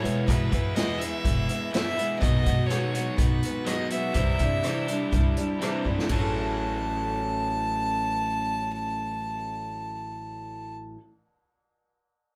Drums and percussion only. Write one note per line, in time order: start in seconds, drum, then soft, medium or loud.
0.05 closed hi-hat medium
0.28 kick loud
0.28 closed hi-hat medium
0.52 kick medium
0.52 closed hi-hat medium
0.76 snare medium
0.76 closed hi-hat medium
1.01 closed hi-hat medium
1.25 kick medium
1.25 closed hi-hat medium
1.49 closed hi-hat medium
1.74 snare loud
1.74 closed hi-hat medium
1.99 closed hi-hat medium
2.22 kick loud
2.22 closed hi-hat medium
2.46 kick medium
2.46 closed hi-hat medium
2.70 cross-stick medium
2.70 closed hi-hat medium
2.95 closed hi-hat medium
3.18 kick loud
3.18 closed hi-hat medium
3.43 closed hi-hat medium
3.66 cross-stick loud
3.66 closed hi-hat medium
3.90 closed hi-hat medium
4.14 kick loud
4.14 closed hi-hat medium
4.39 kick medium
4.39 closed hi-hat medium
4.64 cross-stick medium
4.64 closed hi-hat medium
4.88 closed hi-hat medium
5.12 kick medium
5.12 closed hi-hat medium
5.37 closed hi-hat medium
5.62 cross-stick medium
5.62 closed hi-hat medium
5.85 kick medium
5.99 snare medium
6.09 kick medium
6.09 ride medium